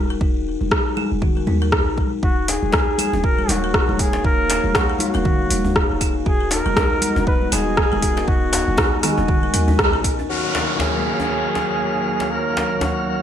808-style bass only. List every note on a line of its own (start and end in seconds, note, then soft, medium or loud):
0.00 0.17 D#1 medium
0.21 0.55 D#1 loud
0.61 0.69 D#1 medium
1.12 1.43 D#1 medium
1.47 1.89 D#2 medium
1.87 2.19 A#1 loud
2.23 2.57 D#1 loud
2.62 2.71 D#1 medium
3.13 3.45 D#1 medium
3.49 3.83 D#1 medium
3.89 4.21 D#1 medium
4.24 4.59 D#1 loud
4.64 4.72 D#1 medium
5.15 5.47 D#1 medium
5.51 5.85 D#1 medium
5.90 6.22 D#1 medium
6.26 6.60 D#1 loud
6.66 6.74 D#1 medium
7.16 7.48 D#1 medium
7.52 7.86 D#1 medium
7.92 8.24 D#1 medium
8.28 8.62 D#1 loud
8.68 8.76 D#1 medium
9.18 9.50 D#1 medium
9.54 9.95 D#2 medium
9.94 10.26 A#1 loud